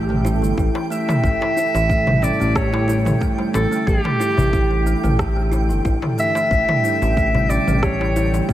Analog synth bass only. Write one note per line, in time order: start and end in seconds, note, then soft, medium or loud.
0.00 0.44 A1 medium
0.43 0.53 G1 loud
0.58 0.70 A1 medium
1.23 1.36 A1 loud
1.74 2.31 A1 medium
2.41 3.14 A1 medium
3.54 3.66 A1 medium
3.87 3.99 A1 loud
4.38 4.95 A1 loud
5.04 5.71 A1 medium
5.70 5.80 G1 loud
5.85 5.97 A1 loud
6.51 6.63 A1 medium
7.02 7.59 A1 loud
7.68 8.41 A1 medium